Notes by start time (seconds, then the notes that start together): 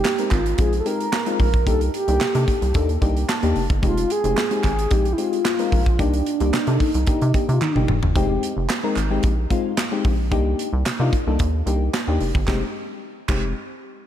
Already playing: G4
0.05 snare, clap
0.18 G#3 C4 D#4 A#4, closed hi-hat
0.31 G#1 F4, kick, clap, closed hi-hat
0.46 closed hi-hat
0.58 A#1 G#3 C4 D#4 F4 G#4, kick, closed hi-hat
0.73 closed hi-hat
0.80 A4
0.85 G#3 C4 D#4 G4 A#4, closed hi-hat
1.00 closed hi-hat
1.13 snare, clap
1.26 G#3 C4 D#4 F4, closed hi-hat
1.39 A#1 A#4, kick, open hi-hat
1.54 kick, closed hi-hat
1.67 C2 A#3 D4 D#4 G4 A4, kick, closed hi-hat
1.81 closed hi-hat
1.94 G4, closed hi-hat
2.08 C2 A#3 D4 D#4 G4, closed hi-hat
2.21 C3, snare, clap
2.35 C3 A#3 D4 D#4 A4, closed hi-hat
2.48 kick, closed hi-hat
2.62 C2, closed hi-hat
2.74 D#2 A#3 D4 D#4 A4, kick, closed hi-hat
2.89 closed hi-hat
3.01 C2 A#3 D4 D#4 G4, kick, closed hi-hat
3.17 closed hi-hat
3.29 A5, snare, clap
3.43 D#2 A#3 D4 D#4 G4, closed hi-hat
3.56 F1, open hi-hat
3.70 G1, kick, closed hi-hat
3.82 F1 G#3 C4 D#4 F4 G4, kick, closed hi-hat
3.97 closed hi-hat
4.10 G#4, closed hi-hat
4.24 F1 G#3 C4 D#4 G4, closed hi-hat
4.37 snare, clap
4.51 G#3 C4 D#4 G4, closed hi-hat
4.64 G#1 G#4, kick, clap, closed hi-hat
4.79 closed hi-hat
4.90 A#1 G#3 C4 D#4 G4, kick, closed hi-hat
5.05 closed hi-hat
5.13 E4
5.18 G#3 C4 D#4 F4 G4, closed hi-hat
5.33 closed hi-hat
5.45 snare, clap
5.59 G#3 C4 D#4 A#4, closed hi-hat
5.72 A#1, kick, open hi-hat
5.86 kick, closed hi-hat
5.99 C2 A#3 D4 D#4 G4, kick, closed hi-hat
6.14 closed hi-hat
6.26 closed hi-hat
6.40 C2 A#3 D4 D#4 G4, closed hi-hat
6.53 C3, snare, clap
6.67 C3 A#3 D4 D#4 A4, closed hi-hat
6.80 D#4, kick, open hi-hat
6.94 C2, closed hi-hat
7.07 A#3 D4 D#4 G4, kick, closed hi-hat
7.21 C3, closed hi-hat
7.34 A#3 D4 D#4 G4, kick, closed hi-hat
7.49 C3, closed hi-hat
7.53 F4
7.61 D#4, clap, high tom
7.72 G1 A#3 D4
7.76 D4 D#4 G4, mid tom
7.81 D#4
7.88 F1, mid tom
8.03 G1, floor tom
8.16 F1 G#3 C4 D#4 G4, kick, closed hi-hat
8.43 closed hi-hat
8.57 F1
8.69 snare, clap, closed hi-hat
8.83 G#3 C4 D#4 A#4
8.96 G#1, clap, closed hi-hat
9.10 G#3 C4 D#4 G4
9.23 A#1, kick, closed hi-hat
9.50 G#3 C4 D#4 F4, kick, closed hi-hat
9.77 snare, clap, closed hi-hat
9.92 G#3 C4 D#4 G4
10.04 A#1, kick, open hi-hat
10.31 C2 A#3 D4 D#4 G4, kick, closed hi-hat
10.59 closed hi-hat
10.73 C2
10.86 C3, snare, clap, closed hi-hat
11.00 C3 A#3 D4 D#4 F4
11.13 kick, closed hi-hat
11.27 C2 A#3 D4 D#4 A4
11.39 D#2, kick, closed hi-hat
11.66 C2 A#3 D4 D#4 G4, closed hi-hat
11.93 snare, clap, closed hi-hat
12.08 D#2 A#3 D4 D#4 G4
12.20 F1, open hi-hat
12.35 G1, kick
12.47 F1 G#3 C4 D#4 G4, kick, snare, clap
13.29 F1 G#3 C4 D#4 G4, kick, clap, crash